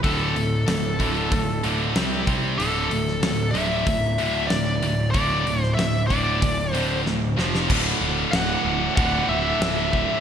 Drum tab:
CC |----------------|----------------|----------------|x---x---x---x---|
HH |o-o-o-o-o-o-o-o-|o-o-o-o-o-o-o-o-|o-o-o-o-o-o-----|----------------|
SD |----o-------o---|---oo-------o---|---oo-------o-oo|----o-------o---|
BD |o-----o-o-----o-|--------o-------|o-----o-o-------|o-------o-----o-|